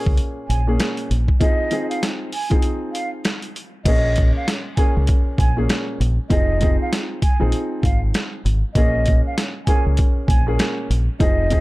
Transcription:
Already playing: A#2 A#3 C#4 G#4
0.06 C#2, kick
0.17 closed hi-hat
0.48 A#1 G#5, closed hi-hat
0.67 A#2 A#3 C#4 G#4
0.80 snare, closed hi-hat
0.97 closed hi-hat
1.11 A#1, closed hi-hat
1.28 kick
1.40 F3 C4 D#4 G#4 D#5, kick, closed hi-hat
1.71 F3 C4 D#4 G#4, closed hi-hat
1.90 F5, closed hi-hat
2.03 snare, closed hi-hat
2.33 G#5, open hi-hat
2.50 F3 C4 D#4 G#4, kick, closed hi-hat
2.62 closed hi-hat
2.92 F5, closed hi-hat
3.25 snare, closed hi-hat
3.42 closed hi-hat
3.56 closed hi-hat
3.85 A#1 A#2 A#3 C#4 G#4 D#5, kick, closed hi-hat, crash
4.16 kick, closed hi-hat
4.37 F5
4.48 snare, closed hi-hat
4.76 A#2 A#3 C#4 G#4 G#5, kick, closed hi-hat
4.97 C#2
5.07 kick, closed hi-hat
5.38 A#1 G#5, kick, closed hi-hat
5.57 A#2 A#3 C#4 G#4
5.69 snare, closed hi-hat
6.00 A#1, closed hi-hat
6.30 F1 F3 C4 D#4 G#4 D#5, kick, closed hi-hat
6.61 F3 C4 D#4 G#4, kick, closed hi-hat
6.82 F5
6.93 snare, closed hi-hat
7.22 G#5, kick, closed hi-hat
7.39 A#1 F3 C4 D#4 G#4
7.52 closed hi-hat
7.83 G#1 F5, kick, closed hi-hat
8.14 snare, closed hi-hat
8.45 G#1, closed hi-hat
8.74 A#1 A#2 A#3 C#4 G#4 D#5, kick, closed hi-hat
9.06 kick, closed hi-hat
9.27 F5
9.38 snare, closed hi-hat
9.66 A#2 A#3 C#4 G#4 G#5, kick, closed hi-hat
9.86 C#2
9.97 kick, closed hi-hat
10.28 A#1 G#5, kick, closed hi-hat
10.46 A#2 A#3 C#4 G#4
10.59 snare, closed hi-hat
10.90 A#1, closed hi-hat
11.19 F1 F3 C4 D#4 G#4 D#5, kick, closed hi-hat
11.50 F3 C4 D#4 G#4, kick, closed hi-hat

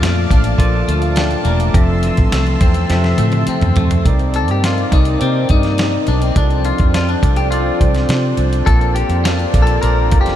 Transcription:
Already playing: A#2 F3 A#3 D4 F4 A4 D5 F5 A5 D6
0.01 F2 A3, snare, closed hi-hat
0.31 A1 D4, kick, closed hi-hat
0.44 closed hi-hat
0.57 A#1 F3 A#3 F4 A4 D5, kick, closed hi-hat
0.88 D2 A3, closed hi-hat
1.02 F5, closed hi-hat
1.16 D4 G5, snare, closed hi-hat
1.31 A5, closed hi-hat
1.45 E1 A3 A#5, closed hi-hat
1.60 D6, closed hi-hat
1.74 F1 F2 F3 C4 A4 E5 C6 E6, kick, closed hi-hat
2.03 E3, closed hi-hat
2.17 A1, kick, closed hi-hat
2.31 C2 A3, snare, closed hi-hat
2.47 closed hi-hat
2.61 E2 C4, kick, closed hi-hat
2.74 closed hi-hat
2.90 F2 C3 F3 C4 A4 E5, snare, closed hi-hat
3.04 snare
3.18 A2 A3, closed hi-hat, high tom
3.32 closed hi-hat, high tom
3.47 C4, muted fingered electric bass stroke, closed hi-hat
3.61 E2, closed hi-hat, mid tom
3.76 F2 A3, closed hi-hat, floor tom
3.91 closed hi-hat, floor tom
4.05 C2 C3 A#3 C4 D#4 A#4 D5, kick, closed hi-hat
4.19 closed hi-hat
4.34 A4, closed hi-hat
4.48 G2 G4, closed hi-hat
4.64 F4, snare, closed hi-hat
4.78 closed hi-hat
4.91 C2 C4 D#4 A#4 D5, kick, closed hi-hat
5.05 closed hi-hat
5.19 C3 C4 D#4 A#4 D5, closed hi-hat
5.49 G2 D#4, kick, closed hi-hat
5.63 snare, closed hi-hat
5.78 snare, closed hi-hat
6.07 B1 D4, closed hi-hat
6.22 C4, closed hi-hat
6.34 C2 F3 C4 D4 F4 A4 D5, kick, closed hi-hat
6.51 closed hi-hat
6.65 F4, closed hi-hat
6.78 F2, kick, closed hi-hat
6.94 F4, snare, closed hi-hat
7.09 D4, closed hi-hat
7.21 C2 C4 F4 A4 D5, kick, closed hi-hat
7.36 G4, closed hi-hat
7.51 C4 F4 A4 D5, closed hi-hat
7.81 C2, kick, closed hi-hat
7.95 snare, closed hi-hat
8.09 C3, snare, closed hi-hat
8.37 C2, closed hi-hat
8.53 closed hi-hat
8.66 A#1 A#3 F4 A4 D5, kick, closed hi-hat
8.81 closed hi-hat
8.95 G4, closed hi-hat
9.09 F2, closed hi-hat
9.24 F4, snare, closed hi-hat
9.39 closed hi-hat
9.52 A#1 A#3 F4 A4 D5, kick, closed hi-hat
9.62 A4
9.67 closed hi-hat
9.81 A#1 A#3 F4 A4 A#4 D5, closed hi-hat
10.11 F1, kick, closed hi-hat
10.21 G4
10.26 snare, closed hi-hat

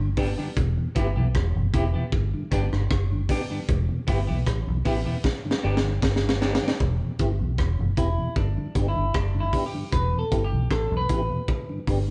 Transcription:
Already playing: G1
0.17 B3 D4 G4, kick, open hi-hat
0.38 G2 D3 B3 D4 G4
0.57 E1, kick, hi-hat pedal
0.77 E2 B2
0.95 G1 B3 E4 G4, kick, closed hi-hat
1.16 B1 E2 B2 B3 E4 G4
1.35 E1, kick, cross-stick
1.55 F#1 E2 B2
1.73 E1 B3 E4 G4, kick, closed hi-hat
1.94 E2 B2 B3 E4 G4
2.12 G1, kick
2.34 G2 D3
2.51 G1 B3 D4 G4, kick, closed hi-hat
2.72 G1 G2 D3, cross-stick
2.91 F#1, kick, cross-stick
3.11 G2 D3
3.29 B3 D4 G4, kick, open hi-hat
3.50 G2 D3 B3 D4 G4
3.68 E1, kick, hi-hat pedal
3.89 E2 B2
4.07 G1 B3 E4 G4, kick, open hi-hat
4.27 B1 E2 B2 B3 E4 G4
4.46 A1, kick, cross-stick, hi-hat pedal
4.67 B1 E2 B2
4.85 A1 B3 E4 G4, kick, open hi-hat
5.06 E2 B2 B3 E4 G4
5.24 kick, snare
5.45 G2 D3
5.51 snare
5.63 G1 B3 D4 G4
5.77 snare
5.84 G2 D3
6.02 G1, kick, snare
6.16 snare
6.23 G2 D3
6.29 snare
6.41 B3 D4 G4, snare
6.55 snare
6.61 G2 D3 B3 D4 G4
6.68 snare
6.80 E1, kick
7.01 E2 B2
7.19 G1 B3 E4 G4, kick, cross-stick, closed hi-hat
7.40 B1 E2 B2
7.58 E1, kick, cross-stick
7.79 F#1 E2 B2
7.97 E1 B3 E4 G4, kick, closed hi-hat
8.18 E2 B2
8.36 G1 D4, kick
8.57 G2 D3
8.75 G1 B3 D4 G4, kick, closed hi-hat
8.88 E4
8.96 G1 G2 D3
9.14 F#1 D4, kick, cross-stick
9.35 G2 D3
9.40 E4
9.53 B3 D4 G4, kick, open hi-hat
9.66 G4
9.74 G2 D3
9.92 E1 B4, kick, hi-hat pedal
10.13 E2 B2
10.19 A4
10.31 G1 B3 E4 G4, kick, closed hi-hat
10.44 G4
10.52 B1 E2 B2
10.71 A1 A4, kick, cross-stick
10.91 B1 E2 B2
10.97 B4
11.09 A1 B3 E4 G4, kick, closed hi-hat
11.30 E2 B2
11.48 kick
11.69 G2 D3
11.87 G1 B3 D4 G4, kick, open hi-hat

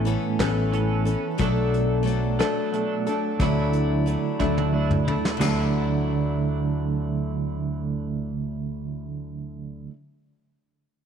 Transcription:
Already playing: A1 A2 E3 B3 C#4 A4
0.05 E3 B3 C#4 A4, closed hi-hat
0.39 A1 A2 E3 B3 C#4 A4, kick, snare, closed hi-hat
0.72 E3 B3 C#4 A4, closed hi-hat
1.05 B3 C#4 A4, closed hi-hat
1.38 B1 B2 F#3 A3 D4 A4, kick, closed hi-hat
1.74 closed hi-hat
2.03 F#3 A3 D4 A4
2.07 closed hi-hat
2.39 B2 F#3 A3 D4 A4, cross-stick, closed hi-hat
2.72 F#3 A3 D4 A4, closed hi-hat
3.07 A3 D4 A4, closed hi-hat
3.39 D2 D3 F#3 A3 D4 E4, kick, closed hi-hat
3.73 closed hi-hat
4.06 F#3 A3 D4 E4, closed hi-hat
4.40 D2 D3 F#3 A3 D4 E4, kick, high tom
4.58 high tom
4.73 F#3 A3 D4 E4
4.91 mid tom
5.08 A3 D4 E4, floor tom
5.25 snare
5.37 D2 D3 F#3, floor tom, crash
5.41 A3 D4 E4, snare
5.46 D4 E4

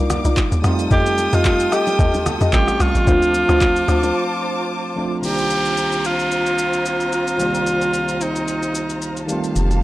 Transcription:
Already playing: C2 D#3 G3 A#3 D4 D#4 F4 A#4 D5 F5 D6
0.10 cross-stick, low conga, shaker
0.25 C2 D#4 F4 A#4 D5, low bongo, shaker
0.37 kick, clap, high bongo, shaker
0.52 D#2, shaker
0.62 F2 G3 A3 C4 F4 A4 G5 D#6, cross-stick, shaker
0.66 D#4 F4
0.79 shaker
0.91 F2 G4 A4 D#5, kick, low conga, shaker
1.06 shaker
1.18 low bongo, shaker
1.33 F2 F4 G4 A4 D#5, shaker
1.45 kick, clap, high bongo, shaker
1.60 shaker
1.72 G4 A4 D#5, cross-stick, shaker
1.87 low bongo, shaker
1.99 D#2 G4 A4 D#5, kick, low conga, shaker
2.14 low bongo, shaker
2.26 cross-stick, low conga, shaker
2.41 F2 G4 A4 D#5, low bongo, shaker
2.52 A1 G3 A3 C4 C#4 F4 G4 C#6, kick, clap, high bongo, shaker
2.68 cross-stick, shaker
2.80 C2 F4, cross-stick, shaker
2.95 A1, shaker
3.05 D2 F3 A3 C4 D4 F4 C5 A5 D6, kick, low conga, shaker
3.09 D4 F4
3.22 shaker
3.34 low bongo, shaker
3.49 D2 D4 F4 C5, cross-stick, shaker
3.61 kick, clap, high bongo, shaker
3.76 shaker
3.88 D2 D4 F4 C5, cross-stick, shaker
4.03 low bongo, shaker
4.96 F3 A3 C4 D4 F4
5.21 C2 D#3 G3 A#3 C4 F4 G4 C5 A#5, downlifter, shaker
5.26 D4 E4
5.33 F4
5.38 shaker
5.50 shaker
5.65 shaker
5.77 shaker
5.92 shaker
6.05 F4, shaker
6.19 shaker
6.32 shaker
6.46 shaker
6.58 shaker
6.73 shaker
6.86 shaker
7.00 shaker
7.13 F4, shaker
7.27 shaker
7.38 C2 D#3 G3 A#3, shaker
7.42 G4 D5
7.55 shaker
7.67 shaker
7.82 shaker
7.94 shaker
8.09 shaker
8.21 D#4, shaker
8.36 shaker
8.48 shaker
8.63 shaker
8.75 shaker
8.90 shaker
9.02 shaker
9.17 shaker
9.27 D#3 G3 A3 G4 F5 A5, shaker
9.31 C4 F4
9.44 shaker
9.56 F1, low conga, shaker
9.71 high bongo, shaker

